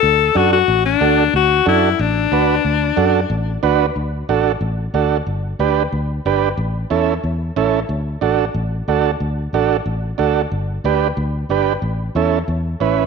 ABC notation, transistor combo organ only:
X:1
M:4/4
L:1/8
Q:1/4=183
K:D
V:1 name="Transistor combo organ"
z2 [DFA] z3 [DFA] z | z2 [DFA] z3 [DFB] z | z2 [DFA] z3 [DFB] z | z2 [DFA] z3 [DFA] z |
z2 [DGB] z3 [DGB] z | z2 [CEA] z3 [CEA] z | z2 [DFA] z3 [DFA] z | z2 [DFA] z3 [DFA] z |
z2 [DGB] z3 [DGB] z | z2 [CEA] z3 [CEB] z |]